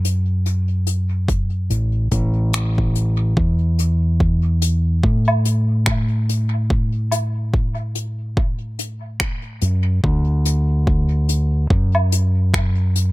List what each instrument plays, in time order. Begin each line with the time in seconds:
Already playing: fingered electric bass F#2
0.05 closed hi-hat
0.46 closed hi-hat
0.87 closed hi-hat
1.28 kick, closed hi-hat
1.70 fingered electric bass A1, closed hi-hat
2.11 fingered electric bass A1, kick, closed hi-hat
2.53 finger snap, closed hi-hat
2.78 kick
2.95 closed hi-hat
3.37 fingered electric bass E2, kick
3.79 closed hi-hat
4.20 kick
4.62 closed hi-hat
5.04 fingered electric bass A2, kick
5.28 low woodblock
5.45 closed hi-hat
5.86 finger snap, kick
6.29 closed hi-hat
6.70 kick
7.12 closed hi-hat, low woodblock
7.54 kick
7.95 closed hi-hat
8.37 kick
8.79 closed hi-hat
9.20 finger snap, kick
9.61 fingered electric bass F#2, closed hi-hat
10.04 fingered electric bass D2, kick
10.45 closed hi-hat
10.87 kick
11.29 closed hi-hat
11.70 fingered electric bass F#2, kick
11.95 low woodblock
12.12 closed hi-hat
12.54 finger snap, kick
12.96 closed hi-hat